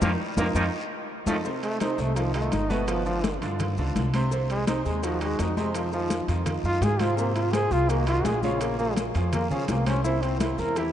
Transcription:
0.01 F2 D#3 F3 A#3 D#4 F4 A#4, low bongo, high conga, high timbale, long guiro, maracas
0.37 F2 D#3 F3 A#3 D#4 F4 A#4, low bongo, high conga, high timbale, long guiro, maracas
0.54 F2 D#3 F3 A#3 D#4 F4 A#4, low bongo, high conga, high timbale, long guiro, maracas
1.26 F2 D#3 F3 A3 D#4 F4 A4, low bongo, high conga, high timbale, long guiro, maracas
1.45 C3 C4 C5, high bongo, high conga, long guiro, maracas
1.63 A3, high bongo, high conga, high timbale, maracas
1.80 C3 C4 D#4 C5, high bongo, high conga, high timbale, short guiro, maracas
1.98 C2 A3, high conga, short guiro, maracas
2.16 D#3 F3 D#4 F4, high bongo, high conga, high timbale, long guiro, maracas
2.34 D#3 A3 D#4 F4, high conga, high timbale, maracas
2.52 G1 D#4, high bongo, low bongo, high conga, high timbale, short guiro, maracas
2.70 B2 A3 B3 B4, high bongo, high conga, short guiro, maracas
2.88 F3, high bongo, high conga, high timbale, long guiro, maracas
3.06 D3 F3 D4 F4, high bongo, high conga, maracas
3.24 high bongo, high conga, high timbale, short guiro, maracas
3.41 G2 D3 D4 F4, high conga, high timbale, short guiro, maracas
3.60 high bongo, high conga, low conga, high timbale, long guiro, maracas
3.77 C#2 D3 D4 F4, high conga, maracas
3.96 C2, high bongo, low bongo, high conga, high timbale, short guiro, maracas
4.14 C3 C4 C5, high bongo, high conga, high timbale, short guiro, maracas
4.31 C3 C4 C5, high bongo, high conga, long guiro, maracas
4.50 G#3, high bongo, high conga, high timbale, maracas
4.67 C3 C4 D#4 C5, high bongo, high conga, high timbale, short guiro, maracas
4.85 D#2 G#3, high conga, short guiro, maracas
5.03 D#3 F3 D#4 F#4, high bongo, high conga, high timbale, long guiro, maracas
5.21 D#3 G#3 D#4 F#4, high conga, high timbale, maracas
5.39 F2 D#4, high bongo, low bongo, high conga, high timbale, short guiro, maracas
5.57 C3 G#3 C4 C5, high bongo, high conga, short guiro, maracas
5.74 F3, high bongo, high conga, high timbale, long guiro, maracas
5.93 D#3 F3 D#4 F4, high bongo, high conga, maracas
6.10 high bongo, high conga, high timbale, short guiro, maracas
6.28 F2 D#3 D#4 F4, high conga, high timbale, short guiro, maracas
6.46 high bongo, high conga, low conga, high timbale, long guiro, maracas
6.63 F#2 D#3 D#4 F4, high conga, maracas
6.81 G#2 G#4, high bongo, low bongo, high conga, high timbale, low timbale, short guiro, maracas
6.99 C3 C4 F4 C5, high bongo, high conga, high timbale, short guiro, maracas
7.17 C3 A#3 C4 C5, high bongo, high conga, long guiro, maracas
7.36 F4, high bongo, high conga, high timbale, maracas
7.53 C3 C4 G#4 C5, high bongo, high conga, high timbale, short guiro, maracas
7.71 C2 F4, high conga, short guiro, maracas
7.89 D#3 A#3 D#4 F#4, high bongo, high conga, high timbale, long guiro, maracas
8.07 D#3 D#4 F4 F#4, high conga, high timbale, maracas
8.24 A#1 G#4, high bongo, low bongo, high conga, high timbale, low timbale, short guiro, maracas
8.43 C#3 C#4 F4 C#5, high bongo, high conga, short guiro, maracas
8.60 A#3, high bongo, high conga, high timbale, long guiro, maracas
8.79 F3 A#3 F4 G#4, high bongo, high conga, maracas
8.96 high bongo, high conga, high timbale, short guiro, maracas
9.14 F2 F3 F4 G#4, high conga, high timbale, short guiro, maracas
9.33 A#3, high bongo, high conga, low conga, high timbale, long guiro, maracas
9.50 C#2 F3 C#4 F4 G#4, high conga, low conga, maracas
9.68 C2 A#3, high bongo, low bongo, high conga, high timbale, low timbale, short guiro, maracas
9.86 C3 C4 C#4 C5, high bongo, high conga, high timbale, short guiro, maracas
10.04 C3 C4 E4 C5, high bongo, high conga, long guiro, maracas
10.22 C4, high bongo, high conga, high timbale, maracas
10.40 C3 C4 E4 C5, high bongo, high conga, high timbale, short guiro, maracas
10.58 E2 A#4, high conga, short guiro, maracas
10.76 E3 E4 G4, high bongo, high conga, high timbale, long guiro, maracas

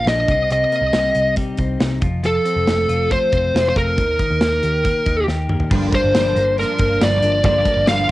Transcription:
Already playing: A#2 F3 A#3
0.06 A#1 D4 D#5, snare, closed hi-hat
0.28 C2 C3, kick, closed hi-hat
0.50 C3 D#5, closed hi-hat
0.72 A#3, closed hi-hat
0.82 C2 C4
0.93 C2 G3, snare, closed hi-hat
1.15 C2 D#4, closed hi-hat
1.36 G3, kick, closed hi-hat
1.57 C2 C4, kick, closed hi-hat
1.80 C2 D#4, snare, closed hi-hat
2.01 F1 F3, kick, closed hi-hat
2.24 F3 A4, closed hi-hat
2.45 C4, closed hi-hat
2.56 F1
2.67 F1 A3, snare, closed hi-hat
2.89 F1 F4, closed hi-hat
3.10 A3 C5, kick, closed hi-hat
3.32 F1 C4, kick, closed hi-hat
3.54 F1 F4, snare, closed hi-hat
3.69 C5
3.76 F1 A3 A#4, kick, closed hi-hat
3.97 D#2 D#3, kick, closed hi-hat
4.19 D#4, kick, closed hi-hat
4.31 D#2
4.40 A#3, snare, closed hi-hat
4.63 D#2 G4, closed hi-hat
4.84 A#3, kick, closed hi-hat
5.06 D#2 D#4, kick, closed hi-hat
5.27 D#2 G4, snare
5.49 D#2 A#3, mid tom
5.60 floor tom
5.70 G1 G2 D3 F3 A#3 D4, kick, crash, tambourine
5.92 F3 A#3 D4 C5, kick, closed hi-hat, tambourine
6.04 G1
6.14 G1 G2 D3 F3 A#3 D4, snare, closed hi-hat, tambourine
6.35 G1 F3 A#3 D4, closed hi-hat, tambourine
6.57 D3 F3 A#3 D4 A#4, closed hi-hat, tambourine
6.79 G1 F3 A#3 D4, kick, closed hi-hat
7.00 G1 G2 D3 F3 A#3 D4 D5, snare, closed hi-hat, tambourine
7.22 G1 F3 A#3 D4, closed hi-hat, tambourine
7.43 G1 G2 D3 F3 A#3 D4 D5, kick, closed hi-hat
7.65 F3 A#3 D4, kick, closed hi-hat, tambourine
7.76 G1
7.87 G1 G2 D3 F3 A#3 D4 F5, snare, closed hi-hat, tambourine

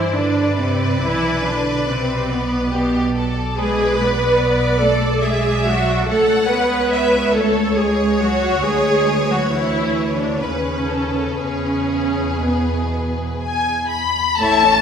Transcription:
Already playing: G2 E3 E4 C5 D5
0.13 D3 D4 B4
0.56 C3 C4
1.00 B1 E3 E4
1.43 D3 D4
1.86 C3 C4
2.29 B2 B3
2.72 B2 B3 G4
3.15 A4
3.57 G#3 G#4 B4 D5
3.99 B3 B4
4.39 D5
4.80 A3 A4
5.22 G#3 G#4 E5
5.65 F#3 F#4
6.06 C#2 A3 A4 C#5 F#5
6.49 B3 B4
6.92 E5
7.32 A3 A4 C#5
7.75 G#3 G#4
8.20 F#3 F#4
8.63 D2 G#3 G#4 B4
9.29 F#3 F#4
9.51 E3 E4
10.18 D3 D4
10.41 D#2 C#3 C#4 B4
10.89 A4
11.38 E2 C#3 C#4 G#4
12.42 B2 B3
13.42 G#5
13.89 B5
14.39 A1 A2 A3 E4 C#5 E5 A5
14.64 C#4 A4 C#5

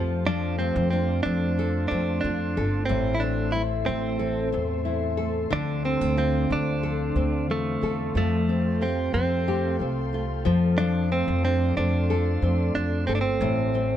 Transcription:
Already playing: F2 F3 A3 C4 F4 A4 D5 F5 C6
0.27 F3 D4
0.59 A3 C4
0.76 F2
0.90 C4 D4
1.23 F2 A3 C4 D4
1.58 F3 A4
1.88 F2 A3 C4 D4
2.21 F2 F3 D4
2.25 D4
2.57 G1 A3 A4
2.86 A2 E3 C4
2.90 A1 C5 E5
3.15 E4
3.20 A3 C4 D4
3.52 C4 E4
3.86 A1 A3 C4
4.19 E3 A4
4.52 E2 A3 C4
4.85 E3 E4
5.17 A3 A4
5.50 D2 D3 F3 D4 D5 F5
5.84 G3 C4
6.01 D2 A3
6.17 C4 F4
6.50 D2 A3 C4 D4
6.83 F3 A4
7.16 D2 A3 C4
7.49 E2 A3 F4
7.82 E2 A3 A4
8.15 F2 F3 A3 A4 G5 C6
8.48 C4
8.81 C4 F4 G4
9.14 F2 C4
9.47 A3 G4
9.80 C2 C4
10.13 A3 F4
10.45 F2 F3 D5 C6
10.78 F3 D4
11.12 A3 C4
11.28 F2
11.44 C4 D4
11.77 F2 A3 C4 D4
12.10 F3 A4
12.42 F2 A3 C4
12.75 F2 F3 D4
13.07 G1 A3 C4 A4
13.15 D4
13.21 C4
13.41 A1 A2 E3 A4 C5 E5
13.74 A3 C4

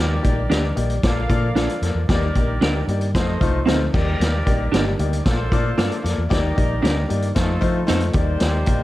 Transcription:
Already playing: D#2 D#3 G3 A#3 D#4 G4 A#4 D5
0.23 A#1 A#3 D#4 G4 D5, kick, closed hi-hat
0.49 D2 A#3 D4 D#4 G4 A#4 D5, snare, closed hi-hat
0.76 A#1 A#3 D#4 G4 D5, closed hi-hat
0.90 closed hi-hat
1.03 A#1 F3 A#3 F4 A4 A#4 D5 F5, kick, snare, closed hi-hat
1.29 A#2 A#3 F4 A4 D5, kick, closed hi-hat
1.55 A#1 A#3 D4 F4 A4 D5, snare, closed hi-hat
1.69 closed hi-hat
1.82 F2 A#3 F4 A4 D5, snare, closed hi-hat
1.95 E2
2.08 D#2 D#3 G3 A#3 D#4 G4 A#4 D5, kick, snare, closed hi-hat
2.35 A#1 A#3 D#4 G4 D5, kick, closed hi-hat
2.61 D2 A#3 D4 D#4 G4 A#4 D5, snare, closed hi-hat
2.88 G2 A#3 D#4 G4 D5, closed hi-hat
3.01 closed hi-hat
3.14 F2 F3 A3 D#4 F4 A4 C5 D#5, kick, snare, closed hi-hat
3.41 C2 A3 D#4 F4 C5, kick, closed hi-hat
3.66 D2 A3 C4 D#4 F4 A4 C5, snare, closed hi-hat
3.93 D#2 D#3 G3 A#3 D#4 G4 A#4 D5, kick, snare, crash
4.20 D#2, snare, closed hi-hat
4.46 A#1 A#3 D#4 G4 D5, kick, closed hi-hat
4.72 G1 A#3 D4 D#4 G4 A#4 D5, snare, closed hi-hat
4.99 D2 A#3 D#4 G4 D5, closed hi-hat
5.13 closed hi-hat
5.25 A#1 A3 A#3 F4 A4 C5 D5, kick, snare, closed hi-hat
5.52 A#2 A#3 F4 A4 D5, kick, closed hi-hat
5.78 G2 A#3 D4 F4 A4 D5, snare, closed hi-hat
5.92 closed hi-hat
6.03 F2 A#3 F4 A4 D5, snare, closed hi-hat
6.18 E2
6.29 D#2 D#3 G3 A#3 D#4 G4 A#4 D5, kick, snare, closed hi-hat
6.56 A#1 A#3 D#4 G4 D5, kick, closed hi-hat
6.81 D2 A#3 D4 D#4 G4 A#4 D5, closed hi-hat
6.85 snare
7.08 G2 A#3 D#4 G4 D5, closed hi-hat
7.22 closed hi-hat
7.35 F2 F3 A3 D#4 F4 A4 C5, kick, snare, closed hi-hat
7.61 F3 A3 D#4 F4 C5, kick, closed hi-hat
7.87 F2 A3 C4 D#4 F4 A4 C5, snare, closed hi-hat
8.00 closed hi-hat
8.13 D#2 D#3 G3 A#3 D#4 G4 C5 D5, kick, closed hi-hat
8.40 D#2, snare, closed hi-hat
8.66 A#1 A#3 D#4 G4 D5, kick, closed hi-hat

